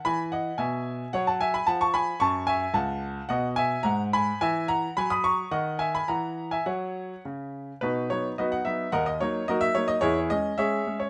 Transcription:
X:1
M:2/4
L:1/16
Q:1/4=109
K:F#dor
V:1 name="Grand piano"
[gb]2 [df]2 [eg]4 | [cf] [fa] [eg] [gb] [fa] [ac'] [gb]2 | [ac']2 [eg]2 [fa]4 | [K:B] [df]2 [eg]2 [fa]2 [gb]2 |
[eg]2 [fa]2 [gb] [bd'] [ac']2 | [df]2 [eg] [gb] [fa]3 [eg] | [cf]4 z4 | [DFB]2 c2 [FBd] f e2 |
[Adf] d c2 [FAd] e c d | [EGc]2 d2 [Gce]3 c |]
V:2 name="Grand piano" clef=bass
E,4 B,,4 | F,4 ^E,4 | F,,4 C,,4 | [K:B] B,,4 G,,4 |
E,4 F,4 | D,4 E,4 | F,4 C,4 | B,,2 [F,B,D]2 [F,B,D]2 [F,B,D]2 |
D,,2 [F,A,D]2 [F,A,D]2 [F,A,D]2 | E,,2 [G,C]2 [G,C]2 [G,C]2 |]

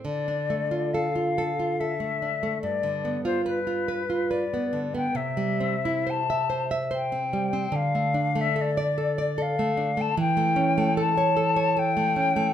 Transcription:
X:1
M:3/4
L:1/16
Q:1/4=72
K:Ddor
V:1 name="Flute"
d4 f4 e4 | d3 c B4 d3 g | e4 a3 z g4 | f3 e d4 f3 a |
[K:Aphr] g4 a4 g4 |]
V:2 name="Nylon-string guitar"
D, D A, F A F A F A A, D A, | G,, D, B, F B F B F B B, D, B, | C, G, C E c e c e c C G, C | D, A, D A, A d A d A A, D A, |
[K:Aphr] E, A, ^C A, A ^c A c A A, C A, |]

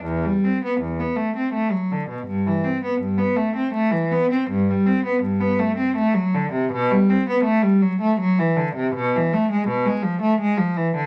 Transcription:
X:1
M:3/4
L:1/16
Q:1/4=82
K:Em
V:1 name="Cello" clef=bass
E,, G, C B, E,, B, A, C A, F, D, B,, | G,, E, C B, G,, B, A, C A, E, B, C | G,, G, C B, G,, B, A, C A, F, D, C, | B,, G, C B, A, G, F, A, F, E, D, C, |
[K:Ephr] B,, E, A, ^G, B,, G, F, A, G, F, E, D, |]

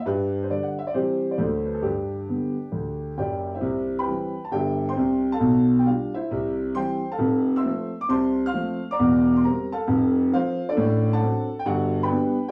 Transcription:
X:1
M:4/4
L:1/16
Q:"Swing" 1/4=134
K:G
V:1 name="Grand piano"
[GB]3 c d f e d [Gc]3 d [Ac]2 B A | [DG]12 [Gdg]3 [Ece]- | [K:C] [Ece]3 [Bgb]4 a [Geg]3 [cgc']4 [Afa]- | [Afa]3 g [Ff]2 [Ece]4 z2 [cgc']3 [Afa]- |
[Afa]3 [ec'e']4 d' [cac']3 [fc'f']4 [d_bd']- | [d_bd']3 c' [_Bb]2 [Afa]4 z2 [Fcf]3 [DAd]- | [K:G] [DAd]3 [Afa]4 g [Ff]3 [Bgb]4 z |]
V:2 name="Grand piano" clef=bass
G,,4 [D,G,D]4 [C,E,G,C]4 [D,,D,F,A,]4 | G,,4 [D,G,B,]4 D,,4 [F,,,F,,]4 | [K:C] [C,,C,]4 [E,G,C]4 [G,,,G,,]4 [C,,C,]4 | [B,,,B,,]4 [G,D]4 [C,,C,]4 [E,G,C]4 |
[F,,,F,,]4 [F,A,C]4 [C,,C,]4 [F,A,C]4 | [E,,,E,,]4 [G,C]4 [F,,,F,,]4 [F,C]4 | [K:G] [A,,,A,,]4 [F,CD]4 [G,,,G,,]4 [G,B,D]4 |]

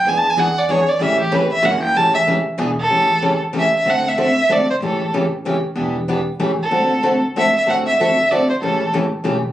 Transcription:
X:1
M:3/4
L:1/8
Q:"Swing" 1/4=189
K:Amix
V:1 name="Violin"
(3^g a g f d c d | e G B e f g | a e z3 A- | A3 z e e |
f e e2 d =c | A2 z4 | z4 z A- | A3 z e e |
f e e2 d =c | A2 z4 |]
V:2 name="Steel-string acoustic guitar"
[E,B,D^G] z [E,B,DG] z [E,B,DG] z | [C,E,A,CG] z [C,E,A,CG] z [C,E,^A,CF] z | [C,E,A,CG] z [C,E,A,CG] z [E,B,D^G] z | [C,E,A,CG] z [C,E,A,CG] z [C,E,A,CG] z |
[D,A,=CFA] z [D,A,CFA] z [D,A,CFA] z | [C,E,A,CG] z [C,E,A,CG] z [C,E,A,CG] z | [E,B,DG] z [E,B,DG] z [C,E,A,CG] z | [D,A,=CFA] z [D,A,CFA] z [D,A,CFA] z |
[D,A,=CFA] z [D,A,CFA] z [D,A,CFA] z | [C,E,A,CG] z [C,E,A,CG] z [C,E,A,CG] z |]
V:3 name="Upright bass" clef=bass
E,,6 | A,,,4 F,,,2 | A,,,4 E,,,2 | A,,,6 |
D,,6 | A,,,6 | E,,,4 A,,,2 | D,,6 |
A,,,6 | A,,,2 A,,,2 B,,,2 |]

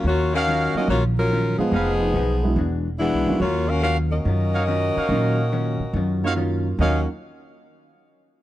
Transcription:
X:1
M:4/4
L:1/8
Q:"Swing" 1/4=142
K:Ebm
V:1 name="Trumpet section"
z [EGdf]3 z4 | [EAcf] z6 z | z4 z [EGdf] z [EGdf]- | [EGdf]2 z3 [EGdf] z2 |
[EGdf] z6 z |]
V:2 name="Saxophone section"
[B,FGd] [DGBf]2 [DGBe] [B,FGd] [G,DFB]2 [F,CEA]- | [F,CEA]4- [F,CEA] z [^G,=B,=D=E]2 | [B,FGd] [DGBf] [DGBf] [DGBe]4- [DGBe]- | [DGBe]6 z2 |
[DGBe] z6 z |]
V:3 name="Grand piano"
z3 [G,B,DEF] z3 [F,A,CEF] | z3 [G,A,C=D_F] z3 [^F,B,_DE=F] | z8 | [G,B,DEF] z4 [G,B,DEF]3 |
[G,B,DEF] z6 z |]
V:4 name="Hollow-body jazz guitar"
[E,G,DF] z [E,G,DF] z [E,G,DF] z [E,G,DF] z | [F,CEA] z [F,CEA] z [=E,^G,=D^F] z [E,G,DF] z | [E,G,DF] z [E,G,DF] z [E,G,DF] z [E,G,DF] z | [E,G,DF] z [E,G,DF] z [E,G,DF] z [E,G,DF] z |
[E,G,DF] z6 z |]
V:5 name="Upright bass" clef=bass
E,,3 z B,,,3 z | F,,,2 C,,2 =E,,,2- (3E,,, =B,,, =D,, | E,,4 G,,3 z | B,,3 z G,,4 |
E,, z6 z |]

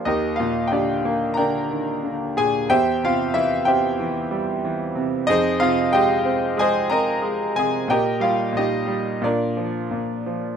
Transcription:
X:1
M:4/4
L:1/8
Q:1/4=91
K:Eb
V:1 name="Grand piano"
[EGBe] [Ff] [Gdg]2 [Bdgb]2 z [Aa] | [Gc=eg] [Ff] [=Ee] [Geg]4 z | [EAce] [Ff] [Geg]2 [Acea] [Beb]2 [Aa] | [GBeg] [Ff] [EGe]2 [DFBd]3 z |]
V:2 name="Grand piano" clef=bass
E,, B,, D, B, D, E, D, B,, | =E,, C, =E, C E, G, E, C, | F,, C, A, C A, C A, C, | B,, G, B,, G, B,, F, B,, F, |]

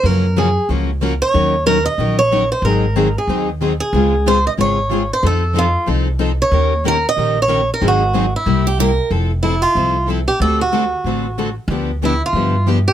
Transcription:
X:1
M:4/4
L:1/8
Q:"Swing" 1/4=186
K:Ebdor
V:1 name="Steel-string acoustic guitar"
B2 A2 z3 d- | d2 B e2 d2 c | B3 A2 z2 A- | A2 c e d3 c |
=A2 F2 z3 d- | d2 B e2 d2 B | G3 _F2 z3 | [K:F] z2 E F3 z G |
A ^F6 z | z2 E F3 z G |]
V:2 name="Steel-string acoustic guitar"
z8 | z8 | z8 | z8 |
z8 | z8 | z4 z =G B2 | [K:F] z8 |
z8 | z8 |]
V:3 name="Steel-string acoustic guitar"
[D,F,B,DG] z [D,F,B,DG] z [D,F,B,DG] z [D,F,B,DG] z | [E,G,DEB] z [E,G,DEB] z [E,G,DEB] z [E,G,DEB] z | [E,G,CEA] z [E,G,CEA] z [E,G,CEA] z [E,G,CEA] z | [D,A,CFA] z [D,A,CFA] z [D,A,CFA] z [D,A,CFA] z |
[F,CE=A] z [F,CEA] z [F,CEA] z [F,CEA] z | [E,B,D=GB] z [E,B,DGB] z [E,B,DGB] z [E,B,DGB] z | [E,G,CEA] z [E,G,CEA] z [C,=G,B,=E=G] z [C,G,B,EG] z | [K:F] [F,CEA] z [F,CEA] z [F,CEA] z [F,CEA] z |
[D,A,C^FA] z [D,A,CFA] z [D,A,CFA] z [D,A,CFA] z | [D,F,=B,DG] z [D,F,B,DG] z [D,F,B,DG] z [D,F,B,DG] z |]
V:4 name="Steel-string acoustic guitar"
[G,DFB] z [G,DFB] z [G,DFB] z [G,DFB] z | [E,G,DEB] z [E,G,DEB] z [E,G,DEB] z [E,G,DEB] z | [E,G,CEA] z [E,G,CEA] z [E,G,CEA] z [E,G,CEA] z | [D,A,CFA] z [D,A,CFA] z [D,A,CFA] z [D,A,CFA] z |
[F,CE=A] z [F,CEA] z [F,CEA] z [F,CEA] z | [E,B,D=GB] z [E,B,DGB] z [E,B,DGB] z [E,B,DGB] z | [E,G,CEA] z [E,G,CEA] z [C,=G,B,=E=G] z [C,G,B,EG] z | [K:F] [F,CEA] z [F,CEA] z [F,CEA] z [F,CEA] z |
[D,A,C^FA] z [D,A,CFA] z [D,A,CFA] z [D,A,CFA] z | [D,F,=B,DG] z [D,F,B,DG] z [D,F,B,DG] z [D,F,B,DG] z |]
V:5 name="Upright bass" clef=bass
G,,4 D,,4 | E,,4 B,,,4 | A,,,4 E,,4 | D,,4 A,,,4 |
F,,4 C,,4 | E,,4 B,,,4 | A,,,4 C,,4 | [K:F] F,,,4 C,,4 |
D,,4 A,,,4 | D,,4 G,,4 |]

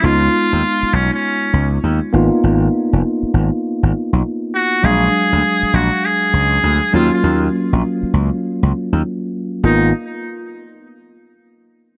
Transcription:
X:1
M:4/4
L:1/16
Q:"Swing 16ths" 1/4=100
K:G#dor
V:1 name="Muted trumpet"
E6 C C4 z4 z | z12 z2 F2 | G6 F2 G6 E E- | E z12 z3 |
D2 z12 z2 |]
V:2 name="Tine electric piano"
[G,B,DE]12- [G,B,DE]2 [A,B,DE]2- | [A,B,DE]12- [A,B,DE]2 z2 | [F,G,=De]12- [F,G,De]2 [F,A,CE]2- | [F,A,CE]12- [F,A,CE]2 z2 |
[A,B,DE]2 z12 z2 |]
V:3 name="Slap bass" clef=bass
C,,2 z D,, z2 B,,, z3 C,,2 D,, z G,,, z | G,,,2 z E,,, z2 G,,, z2 G,,, z B,,, z4 | A,,,2 z =D,, z2 A,,, z3 C,,2 D,, z ^D,, z | D,,2 z A,,, z2 C,, z2 C,, z D,, z4 |
G,,,2 z12 z2 |]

